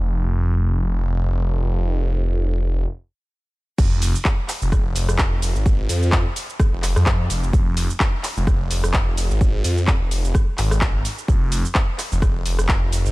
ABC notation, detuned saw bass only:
X:1
M:4/4
L:1/16
Q:"Swing 16ths" 1/4=128
K:Fm
V:1 name="Detuned saw bass" clef=bass
F,,,16- | F,,,8 z8 | F,,,3 z4 F,,,3 F,,,2 z3 A,,,- | A,,,2 F,,3 z4 F,,,2 F,,3 F,,,2 |
F,,,3 z4 F,,,3 F,,,2 z3 A,,,- | A,,,2 F,,3 F,,,3 z2 A,,,4 z2 | F,,,3 z4 F,,,3 F,,,2 F,,,3 A,,, |]